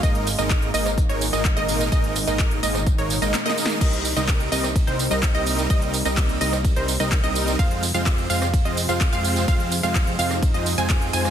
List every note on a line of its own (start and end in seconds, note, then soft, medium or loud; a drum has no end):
0.00 0.36 G#1 loud
0.00 3.77 A#2 medium
0.00 3.77 D#3 medium
0.00 3.77 G#3 medium
0.00 0.28 A#3 medium
0.00 7.55 D#4 loud
0.00 0.28 D#4 medium
0.00 0.28 A#4 medium
0.00 0.28 D#5 loud
0.00 kick loud
0.00 closed hi-hat medium
0.00 tambourine soft
0.15 closed hi-hat soft
0.27 open hi-hat loud
0.27 tambourine medium
0.38 0.72 G#1 loud
0.38 0.71 G#3 medium
0.38 0.71 A#3 medium
0.38 0.71 D#4 medium
0.38 0.71 A#4 medium
0.38 0.71 D#5 medium
0.38 closed hi-hat soft
0.38 tambourine soft
0.50 kick loud
0.50 clap loud
0.50 closed hi-hat medium
0.50 tambourine soft
0.62 closed hi-hat soft
0.74 1.07 G#1 loud
0.74 0.90 G#3 medium
0.74 0.90 A#3 medium
0.74 0.90 D#4 medium
0.74 0.90 A#4 medium
0.74 0.90 D#5 loud
0.74 open hi-hat loud
0.74 tambourine medium
0.86 cross-stick medium
0.86 closed hi-hat soft
0.86 tambourine soft
0.98 kick loud
0.98 closed hi-hat medium
0.98 tambourine soft
1.09 1.31 G#1 loud
1.09 1.25 G#3 medium
1.09 1.25 A#3 medium
1.09 1.25 D#4 medium
1.09 1.25 A#4 medium
1.09 1.25 C#5 medium
1.09 closed hi-hat soft
1.21 open hi-hat loud
1.21 tambourine medium
1.33 1.54 G#1 loud
1.33 1.49 G#3 medium
1.33 1.49 A#3 medium
1.33 1.49 D#4 medium
1.33 1.49 A#4 medium
1.33 1.49 D#5 medium
1.33 closed hi-hat soft
1.33 tambourine soft
1.45 kick loud
1.45 clap loud
1.45 closed hi-hat medium
1.45 tambourine soft
1.56 1.90 G#1 loud
1.56 1.89 G#3 loud
1.56 1.89 A#3 medium
1.56 1.89 D#4 medium
1.56 1.89 A#4 medium
1.56 1.89 D#5 loud
1.56 closed hi-hat soft
1.68 open hi-hat loud
1.68 tambourine medium
1.80 closed hi-hat soft
1.80 tambourine soft
1.92 2.25 G#1 loud
1.92 2.17 G#3 medium
1.92 2.17 A#3 medium
1.92 2.17 D#4 medium
1.92 2.17 D#5 loud
1.92 kick loud
1.92 closed hi-hat medium
1.92 tambourine soft
2.04 closed hi-hat soft
2.16 open hi-hat loud
2.16 tambourine medium
2.27 2.61 G#1 loud
2.27 2.60 G#3 medium
2.27 2.60 A#3 medium
2.27 2.60 D#4 medium
2.27 2.60 A#4 medium
2.27 2.60 D#5 medium
2.27 closed hi-hat soft
2.27 tambourine soft
2.39 kick loud
2.39 clap loud
2.39 closed hi-hat medium
2.39 tambourine soft
2.51 closed hi-hat soft
2.63 2.96 G#1 loud
2.63 2.79 G#3 medium
2.63 2.79 A#3 medium
2.63 2.79 D#4 medium
2.63 2.79 A#4 medium
2.63 2.79 D#5 loud
2.63 open hi-hat loud
2.63 tambourine medium
2.75 cross-stick medium
2.75 closed hi-hat soft
2.75 tambourine soft
2.87 kick loud
2.87 closed hi-hat medium
2.87 tambourine soft
2.98 3.20 G#1 loud
2.98 3.14 G#3 medium
2.98 3.14 A#3 medium
2.98 3.14 D#4 medium
2.98 3.14 A#4 medium
2.98 3.14 C#5 medium
2.98 closed hi-hat soft
3.10 open hi-hat loud
3.10 tambourine medium
3.22 3.34 G#1 loud
3.22 3.38 G#3 medium
3.22 3.38 A#3 medium
3.22 3.38 D#4 medium
3.22 3.38 A#4 medium
3.22 3.38 D#5 medium
3.22 closed hi-hat soft
3.22 tambourine soft
3.34 snare medium
3.34 clap loud
3.34 closed hi-hat medium
3.34 tambourine soft
3.45 3.78 G#3 medium
3.45 3.78 A#3 medium
3.45 3.78 D#4 medium
3.45 3.78 A#4 medium
3.45 3.78 D#5 loud
3.45 closed hi-hat soft
3.50 snare medium
3.58 open hi-hat loud
3.58 tambourine medium
3.65 snare medium
3.65 closed hi-hat soft
3.70 tambourine soft
3.81 4.14 C2 medium
3.81 7.55 C3 medium
3.81 4.06 G3 medium
3.81 7.55 G3 medium
3.81 7.55 A#3 medium
3.81 4.06 C4 medium
3.81 4.06 D#4 medium
3.81 4.06 A#4 medium
3.81 4.06 D#5 loud
3.81 kick loud
3.81 closed hi-hat medium
3.81 crash medium
3.81 ride medium
3.81 tambourine soft
3.93 closed hi-hat soft
4.05 open hi-hat loud
4.05 tambourine medium
4.16 4.50 C2 loud
4.16 4.49 G3 medium
4.16 4.49 C4 medium
4.16 4.49 D#4 medium
4.16 4.49 A#4 medium
4.16 4.49 D#5 medium
4.16 closed hi-hat soft
4.16 tambourine soft
4.28 kick loud
4.28 clap loud
4.28 closed hi-hat medium
4.28 ride medium
4.28 tambourine soft
4.40 closed hi-hat soft
4.52 4.85 C2 loud
4.52 4.68 G3 loud
4.52 4.68 C4 medium
4.52 4.68 D#4 medium
4.52 4.68 A#4 medium
4.52 4.68 D#5 loud
4.52 open hi-hat loud
4.52 tambourine medium
4.64 cross-stick medium
4.64 closed hi-hat soft
4.64 tambourine soft
4.76 kick loud
4.76 closed hi-hat medium
4.76 ride medium
4.76 tambourine soft
4.87 5.09 C2 loud
4.87 5.03 G3 medium
4.87 5.03 C4 medium
4.87 5.03 D#4 medium
4.87 5.03 A#4 medium
4.87 5.03 C5 medium
4.87 closed hi-hat soft
4.99 open hi-hat loud
4.99 tambourine medium
5.11 5.32 C2 loud
5.11 5.27 G3 medium
5.11 5.27 C4 medium
5.11 5.27 D#4 medium
5.11 5.27 A#4 medium
5.11 5.27 D#5 medium
5.11 closed hi-hat soft
5.11 tambourine soft
5.23 kick loud
5.23 clap loud
5.23 closed hi-hat medium
5.23 ride medium
5.23 tambourine soft
5.35 5.68 C2 loud
5.35 5.67 G3 loud
5.35 5.67 C4 medium
5.35 5.67 D#4 medium
5.35 5.67 A#4 medium
5.35 5.67 D#5 loud
5.35 closed hi-hat soft
5.46 open hi-hat loud
5.46 tambourine medium
5.58 closed hi-hat soft
5.58 tambourine soft
5.70 6.03 C2 loud
5.70 5.95 G3 medium
5.70 5.95 D#4 medium
5.70 5.95 D#5 loud
5.70 kick loud
5.70 closed hi-hat medium
5.70 ride medium
5.70 tambourine soft
5.82 closed hi-hat soft
5.94 open hi-hat loud
5.94 tambourine medium
6.05 6.39 C2 loud
6.05 6.38 G3 medium
6.05 6.38 C4 medium
6.05 6.38 D#4 medium
6.05 6.38 A#4 medium
6.05 6.38 D#5 medium
6.05 closed hi-hat soft
6.05 tambourine soft
6.17 kick loud
6.17 clap loud
6.17 closed hi-hat medium
6.17 ride medium
6.29 closed hi-hat soft
6.41 6.74 C2 loud
6.41 6.57 G3 medium
6.41 6.57 C4 medium
6.41 6.57 D#4 medium
6.41 6.57 A#4 medium
6.41 6.57 D#5 loud
6.41 open hi-hat loud
6.41 tambourine medium
6.53 cross-stick medium
6.53 closed hi-hat soft
6.53 tambourine soft
6.65 kick loud
6.65 closed hi-hat medium
6.65 ride medium
6.65 tambourine soft
6.76 6.98 C2 loud
6.76 6.92 G3 medium
6.76 6.92 C4 medium
6.76 6.92 D#4 medium
6.76 6.92 A#4 medium
6.76 6.92 C5 medium
6.76 closed hi-hat soft
6.88 open hi-hat loud
6.88 tambourine medium
7.00 7.21 C2 loud
7.00 7.16 G3 medium
7.00 7.16 C4 medium
7.00 7.16 D#4 medium
7.00 7.16 A#4 medium
7.00 7.16 D#5 medium
7.00 closed hi-hat soft
7.00 tambourine soft
7.12 kick loud
7.12 clap loud
7.12 closed hi-hat medium
7.12 ride medium
7.12 tambourine soft
7.23 7.57 C2 loud
7.23 7.56 G3 loud
7.23 7.56 C4 medium
7.23 7.56 D#4 medium
7.23 7.56 A#4 medium
7.23 7.56 D#5 loud
7.23 closed hi-hat soft
7.35 open hi-hat loud
7.35 tambourine medium
7.47 closed hi-hat soft
7.47 tambourine soft
7.59 7.92 F2 loud
7.59 11.30 C3 medium
7.59 11.30 F3 medium
7.59 7.84 G#3 medium
7.59 11.30 G#3 medium
7.59 7.84 C4 medium
7.59 7.84 F4 medium
7.59 9.46 F4 medium
7.59 7.84 C5 medium
7.59 7.84 F5 loud
7.59 kick loud
7.59 closed hi-hat medium
7.59 ride medium
7.59 tambourine soft
7.71 closed hi-hat soft
7.83 open hi-hat loud
7.83 tambourine medium
7.94 8.28 F2 loud
7.94 8.27 G#3 medium
7.94 8.27 C4 medium
7.94 8.27 F4 medium
7.94 8.27 C5 medium
7.94 8.27 F5 medium
7.94 tambourine soft
8.06 kick loud
8.06 clap loud
8.06 closed hi-hat medium
8.06 ride medium
8.06 tambourine soft
8.18 closed hi-hat soft
8.30 8.63 F2 loud
8.30 8.46 G#3 medium
8.30 8.46 C4 medium
8.30 8.46 F4 medium
8.30 8.46 C5 medium
8.30 8.46 F5 loud
8.30 open hi-hat loud
8.30 tambourine medium
8.42 cross-stick medium
8.42 closed hi-hat soft
8.42 tambourine soft
8.54 kick loud
8.54 closed hi-hat medium
8.54 ride medium
8.54 tambourine soft
8.65 8.87 F2 loud
8.65 8.81 G#3 medium
8.65 8.81 C4 medium
8.65 8.81 F4 medium
8.65 8.81 C5 medium
8.65 8.81 D#5 medium
8.65 closed hi-hat soft
8.77 open hi-hat loud
8.77 tambourine medium
8.89 9.10 F2 loud
8.89 9.05 G#3 medium
8.89 9.05 C4 medium
8.89 9.05 F4 medium
8.89 9.05 C5 medium
8.89 9.05 F5 medium
8.89 closed hi-hat soft
8.89 tambourine soft
9.01 kick loud
9.01 clap loud
9.01 closed hi-hat medium
9.01 ride medium
9.01 tambourine soft
9.12 9.46 F2 loud
9.12 9.45 G#3 loud
9.12 9.45 C4 medium
9.12 9.45 F4 medium
9.12 9.45 C5 medium
9.12 9.45 F5 loud
9.12 closed hi-hat soft
9.24 open hi-hat loud
9.24 tambourine medium
9.36 closed hi-hat soft
9.36 tambourine soft
9.48 9.81 F2 loud
9.48 9.73 G#3 medium
9.48 9.73 C4 medium
9.48 11.30 D#4 medium
9.48 9.73 F4 medium
9.48 9.73 C5 medium
9.48 9.73 F5 loud
9.48 kick loud
9.48 closed hi-hat medium
9.48 ride medium
9.48 tambourine soft
9.60 closed hi-hat soft
9.72 open hi-hat loud
9.72 tambourine medium
9.83 10.16 F2 loud
9.83 10.16 G#3 medium
9.83 10.16 C4 medium
9.83 10.16 F4 medium
9.83 10.16 C5 medium
9.83 10.16 F5 medium
9.83 closed hi-hat soft
9.83 tambourine soft
9.95 kick loud
9.95 clap loud
9.95 closed hi-hat medium
9.95 ride medium
9.95 tambourine soft
10.07 closed hi-hat soft
10.19 10.52 F2 medium
10.19 10.35 G#3 loud
10.19 10.35 C4 medium
10.19 10.35 F4 medium
10.19 10.35 C5 medium
10.19 10.35 F5 loud
10.19 open hi-hat loud
10.19 tambourine medium
10.31 cross-stick medium
10.31 closed hi-hat soft
10.31 tambourine soft
10.43 kick loud
10.43 closed hi-hat medium
10.43 ride medium
10.43 tambourine soft
10.54 10.76 F2 loud
10.54 10.70 G#3 medium
10.54 10.70 C4 medium
10.54 10.70 F4 medium
10.54 10.70 C5 medium
10.54 10.70 D#5 medium
10.54 closed hi-hat soft
10.66 open hi-hat loud
10.66 tambourine medium
10.78 11.11 F2 loud
10.78 11.11 G#3 medium
10.78 11.11 C4 medium
10.78 11.11 F4 medium
10.78 11.11 C5 medium
10.78 11.11 G#5 loud
10.78 closed hi-hat soft
10.78 tambourine soft
10.90 kick loud
10.90 clap loud
10.90 closed hi-hat medium
10.90 ride medium
10.90 tambourine soft
11.02 closed hi-hat soft
11.13 11.30 F2 loud
11.13 11.30 G#3 medium
11.13 11.30 C4 medium
11.13 11.30 F4 medium
11.13 11.30 C5 medium
11.13 11.30 G#5 loud
11.13 open hi-hat loud
11.13 tambourine medium
11.25 cross-stick medium
11.25 closed hi-hat soft
11.25 tambourine soft